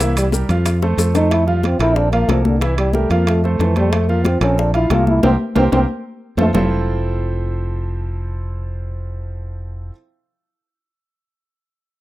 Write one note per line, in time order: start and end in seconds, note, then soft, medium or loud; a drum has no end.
0.00 0.43 C2 medium
0.00 0.27 E3 medium
0.00 0.17 A#3 medium
0.00 0.27 E4 medium
0.00 0.27 E5 medium
0.00 high bongo medium
0.00 high conga soft
0.00 high timbale medium
0.00 maracas medium
0.17 0.27 G3 medium
0.17 high bongo soft
0.17 high conga soft
0.17 high timbale medium
0.17 maracas medium
0.32 0.46 G3 medium
0.32 0.46 G4 medium
0.32 0.46 A#4 medium
0.32 high bongo soft
0.32 high conga medium
0.32 maracas medium
0.49 0.94 F2 medium
0.49 0.76 F3 medium
0.49 0.76 F4 medium
0.49 0.76 F5 medium
0.49 high bongo soft
0.49 high conga soft
0.49 high timbale medium
0.49 maracas soft
0.66 high bongo medium
0.66 high conga soft
0.66 high timbale medium
0.66 maracas medium
0.82 0.96 A3 medium
0.82 0.96 A4 medium
0.82 0.96 C5 medium
0.82 high bongo medium
0.82 high conga soft
0.97 1.74 F2 medium
0.97 1.12 A3 medium
0.97 1.12 A4 medium
0.97 1.12 C5 medium
0.97 high bongo medium
0.97 high conga soft
0.97 high timbale medium
0.97 maracas medium
1.15 1.42 A3 medium
1.15 1.33 D#4 medium
1.15 1.42 A4 medium
1.15 1.42 C5 medium
1.15 low bongo medium
1.15 high timbale medium
1.15 maracas soft
1.31 1.46 E4 medium
1.31 high bongo medium
1.31 high conga soft
1.31 high timbale medium
1.47 1.74 F3 medium
1.47 1.63 G3 medium
1.47 1.74 F4 medium
1.47 1.74 F5 medium
1.47 high bongo soft
1.47 high conga soft
1.63 1.79 C4 medium
1.63 high bongo soft
1.63 high conga medium
1.63 high timbale medium
1.79 2.25 A#1 medium
1.79 2.07 C4 medium
1.79 1.98 E4 loud
1.79 2.07 A4 medium
1.79 2.07 A#4 medium
1.79 high bongo soft
1.79 high conga soft
1.79 high timbale medium
1.96 2.11 D4 medium
1.96 high bongo medium
1.96 high conga soft
2.12 2.26 F3 medium
2.12 2.31 A#3 medium
2.12 2.26 F4 medium
2.12 2.26 F5 medium
2.12 high bongo soft
2.12 high conga soft
2.12 high timbale medium
2.28 3.05 C2 medium
2.28 2.45 F3 medium
2.28 2.56 A#3 medium
2.28 2.56 A4 medium
2.28 2.56 A#4 medium
2.28 high bongo soft
2.28 low bongo medium
2.28 high conga medium
2.28 high timbale medium
2.45 2.63 D3 medium
2.45 high conga medium
2.61 2.88 E3 medium
2.61 2.77 E3 medium
2.61 2.88 E4 medium
2.61 2.88 E5 medium
2.61 high bongo medium
2.61 high conga soft
2.61 high timbale medium
2.78 2.96 G3 medium
2.78 high bongo soft
2.78 high conga soft
2.78 high timbale medium
2.93 3.07 G3 medium
2.93 3.13 A3 medium
2.93 3.08 G4 medium
2.93 3.08 A#4 medium
2.93 high bongo soft
2.93 high conga medium
3.10 3.56 F2 medium
3.10 3.37 F3 medium
3.10 3.30 A#3 medium
3.10 3.38 F4 medium
3.10 3.38 F5 medium
3.10 high bongo soft
3.10 high conga soft
3.10 high timbale medium
3.27 3.44 A3 medium
3.27 high bongo medium
3.27 high conga soft
3.27 high timbale medium
3.44 3.61 C3 soft
3.44 3.57 A3 medium
3.44 3.58 A4 medium
3.44 3.58 C5 medium
3.44 high bongo soft
3.44 high conga soft
3.59 4.36 F2 medium
3.59 3.77 E3 medium
3.59 3.73 A3 medium
3.59 3.73 A4 medium
3.59 3.74 C5 medium
3.59 high bongo soft
3.59 low bongo medium
3.59 high conga soft
3.59 high timbale medium
3.76 3.94 G3 medium
3.76 4.03 A3 medium
3.76 4.03 A4 medium
3.76 4.04 C5 medium
3.76 high conga medium
3.76 high timbale medium
3.92 4.10 A3 medium
3.92 high bongo medium
3.92 high conga soft
3.92 high timbale medium
4.09 4.36 F3 medium
4.09 4.26 A#3 medium
4.09 4.36 F4 medium
4.09 4.36 F5 medium
4.09 high bongo soft
4.09 high conga soft
4.25 4.40 C4 medium
4.25 high bongo soft
4.25 high conga medium
4.25 high timbale medium
4.41 4.87 A#1 medium
4.41 4.69 C4 medium
4.41 4.60 C#4 medium
4.41 4.68 A4 medium
4.41 4.69 A#4 medium
4.41 high bongo soft
4.41 high conga soft
4.41 high timbale medium
4.58 4.73 D4 medium
4.58 high bongo medium
4.58 high conga soft
4.74 4.88 F3 medium
4.74 4.93 E4 medium
4.74 4.88 F4 medium
4.74 4.88 F5 medium
4.74 high bongo soft
4.74 high conga soft
4.74 high timbale medium
4.90 5.21 C2 medium
4.90 5.18 A#3 medium
4.90 5.07 F4 medium
4.90 5.18 A4 medium
4.90 5.18 A#4 medium
4.90 high bongo soft
4.90 low bongo medium
4.90 high conga medium
4.90 high timbale medium
4.90 low timbale medium
5.07 5.23 E4 medium
5.07 high conga medium
5.23 5.36 C2 medium
5.23 5.31 C4 medium
5.23 5.34 G4 medium
5.23 5.34 A#4 medium
5.23 5.34 C5 medium
5.23 low bongo medium
5.23 high conga medium
5.23 high timbale medium
5.56 5.68 C2 medium
5.56 5.64 C4 medium
5.56 5.67 G4 medium
5.56 5.67 A#4 medium
5.56 5.67 C5 medium
5.56 low bongo medium
5.56 high conga medium
5.56 high timbale medium
5.72 5.85 C2 medium
5.72 5.81 C4 medium
5.72 5.83 G4 medium
5.72 5.84 A#4 medium
5.72 5.84 C5 medium
5.72 low bongo medium
5.72 high conga medium
5.72 high timbale medium
6.37 6.50 F2 medium
6.37 6.46 A3 medium
6.37 6.49 F4 medium
6.37 6.49 A4 medium
6.37 6.49 C5 medium
6.37 low bongo medium
6.37 high conga medium
6.37 high timbale medium
6.53 9.90 F1 medium
6.53 9.91 F3 medium
6.53 9.91 C4 medium
6.53 9.91 E4 medium
6.53 9.92 F4 medium
6.53 9.92 A4 medium
6.53 9.92 C5 medium
6.53 low bongo medium
6.53 low conga medium
6.53 low timbale medium